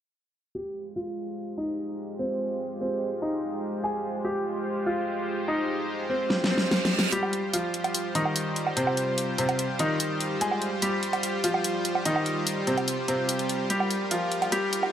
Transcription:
0.55 7.08 G#3 medium
0.55 7.08 F4 medium
0.55 0.81 G4 medium
0.55 7.08 G4 medium
0.55 7.08 C5 medium
0.96 1.50 F4 medium
1.58 2.11 D#4 medium
2.19 2.73 C4 medium
2.81 3.07 C4 medium
3.22 3.76 D#4 medium
3.84 4.09 G#4 medium
4.25 4.78 G4 medium
4.86 5.40 F4 medium
5.48 6.02 D#4 medium
6.10 6.35 C4 medium
6.30 snare medium
6.30 reverse cymbal medium
6.44 snare medium
6.51 7.04 C4 medium
6.58 snare medium
6.71 snare medium
6.85 snare loud
6.99 snare loud
7.12 7.38 G3 medium
7.12 14.92 G3 medium
7.12 14.92 F4 medium
7.12 7.38 G4 loud
7.12 14.92 G4 medium
7.12 13.66 C5 medium
7.12 closed hi-hat medium
7.23 low woodblock soft
7.33 closed hi-hat medium
7.53 8.07 F3 medium
7.53 8.07 F4 medium
7.53 closed hi-hat medium
7.74 closed hi-hat medium
7.84 closed hi-hat soft
7.84 low woodblock soft
7.95 closed hi-hat medium
8.15 8.69 D#3 medium
8.15 8.69 D#4 medium
8.15 closed hi-hat medium
8.26 low woodblock soft
8.36 closed hi-hat medium
8.56 closed hi-hat medium
8.67 low woodblock soft
8.76 9.30 C3 medium
8.76 9.30 C4 medium
8.76 closed hi-hat medium
8.87 low woodblock medium
8.97 closed hi-hat medium
9.18 closed hi-hat medium
9.38 9.64 C3 medium
9.38 9.64 C4 medium
9.38 closed hi-hat medium
9.49 closed hi-hat soft
9.49 low woodblock soft
9.59 closed hi-hat medium
9.79 10.33 D#3 medium
9.79 10.33 D#4 medium
9.79 closed hi-hat medium
10.00 closed hi-hat medium
10.21 closed hi-hat medium
10.41 10.67 G#3 medium
10.41 10.67 G#4 loud
10.41 closed hi-hat medium
10.52 low woodblock medium
10.62 closed hi-hat soft
10.82 11.36 G3 medium
10.82 11.36 G4 medium
10.82 closed hi-hat medium
11.03 closed hi-hat soft
11.13 closed hi-hat soft
11.13 low woodblock soft
11.23 closed hi-hat medium
11.44 11.97 F3 medium
11.44 11.97 F4 medium
11.44 closed hi-hat medium
11.54 low woodblock medium
11.64 closed hi-hat medium
11.85 closed hi-hat medium
11.95 low woodblock soft
12.05 12.59 D#3 medium
12.05 12.59 D#4 medium
12.05 closed hi-hat medium
12.16 low woodblock medium
12.26 closed hi-hat soft
12.47 closed hi-hat medium
12.67 12.93 C3 medium
12.67 12.93 C4 medium
12.67 closed hi-hat soft
12.78 closed hi-hat soft
12.78 low woodblock medium
12.88 closed hi-hat medium
13.08 13.62 C3 medium
13.08 13.62 C4 medium
13.08 closed hi-hat medium
13.29 closed hi-hat medium
13.39 closed hi-hat soft
13.49 closed hi-hat medium
13.70 13.96 G3 medium
13.70 13.96 G4 medium
13.70 14.92 A#4 medium
13.70 closed hi-hat medium
13.70 riser medium
13.80 low woodblock medium
13.91 closed hi-hat medium
14.11 14.51 F3 medium
14.11 14.51 F4 medium
14.11 closed hi-hat medium
14.32 closed hi-hat soft
14.42 closed hi-hat soft
14.42 low woodblock medium
14.52 14.78 G3 medium
14.52 14.78 G4 medium
14.52 closed hi-hat medium
14.73 closed hi-hat medium
14.83 low woodblock medium

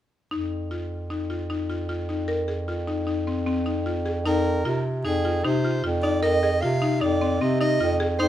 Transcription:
0.31 4.23 F2 medium
0.31 0.55 D#4 medium
0.71 0.95 F4 soft
1.10 1.22 D#4 soft
1.30 1.42 F4 soft
1.50 1.62 D#4 medium
1.70 1.82 F4 soft
1.89 2.01 F4 medium
2.09 2.21 D#4 soft
2.28 2.40 A#4 medium
2.48 2.60 G#4 soft
2.68 2.80 F4 medium
2.87 3.00 D#4 medium
3.07 3.19 D#4 medium
3.27 3.39 C4 medium
3.47 3.59 C4 medium
3.66 3.78 D#4 medium
3.86 3.98 F4 medium
4.06 4.18 G#4 medium
4.26 4.63 F2 medium
4.26 4.49 D#4 medium
4.26 4.81 A#4 medium
4.65 5.02 C3 medium
4.65 4.89 F4 medium
5.04 5.42 F2 medium
5.04 5.17 D#4 medium
5.04 5.46 G#4 medium
5.25 5.37 F4 medium
5.44 5.81 C3 medium
5.44 5.56 D#4 medium
5.44 5.84 C5 medium
5.65 5.76 F4 medium
5.84 6.21 F2 medium
5.84 5.96 F4 medium
6.02 6.15 D#4 medium
6.02 6.21 D5 medium
6.22 6.60 F2 medium
6.22 6.35 A#4 medium
6.22 6.63 D#5 medium
6.43 6.55 G#4 medium
6.61 7.00 C3 medium
6.61 6.74 F4 medium
6.61 7.02 F5 medium
6.82 6.94 D#4 medium
7.00 7.39 F2 medium
7.00 7.13 D#4 medium
7.00 7.42 D5 medium
7.21 7.33 C4 medium
7.41 7.78 C3 medium
7.41 7.53 C4 medium
7.41 7.60 D#5 medium
7.61 7.73 D#4 medium
7.61 7.97 D#5 medium
7.80 8.17 F2 medium
7.80 7.92 F4 medium
8.00 8.12 G#4 medium
8.19 8.28 F2 medium
8.19 8.28 D#4 medium
8.19 8.28 C5 medium

